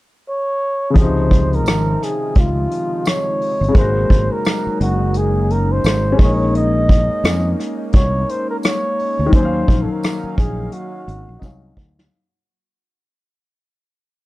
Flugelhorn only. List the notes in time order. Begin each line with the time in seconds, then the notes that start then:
0.29 C#5
1.00 C5
1.55 A#4
2.04 G#4
2.39 F4
3.07 C#5
3.78 C5
4.33 A#4
4.82 F#4
5.17 G#4
5.51 A#4
5.72 C5
6.21 C#5
6.56 D#5
7.95 C#5
8.30 C5
8.50 A#4
8.65 C#5
9.34 C5
9.82 A4
9.91 A#4
10.38 G#4
10.73 F#4